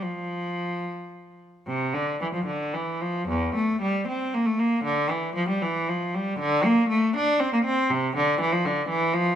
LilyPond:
\new Staff \with { instrumentName = "Cello" } { \clef bass \time 3/4 \key f \major \tempo 4 = 116 f2~ f8 r8 | c8 d8 e16 f16 d8 e8 f8 | e,8 a8 g8 c'8 bes16 a16 bes8 | d8 e8 f16 g16 e8 f8 g8 |
d8 bes8 a8 d'8 c'16 bes16 c'8 | \key d \dorian c8 d8 e16 f16 d8 e8 f8 | }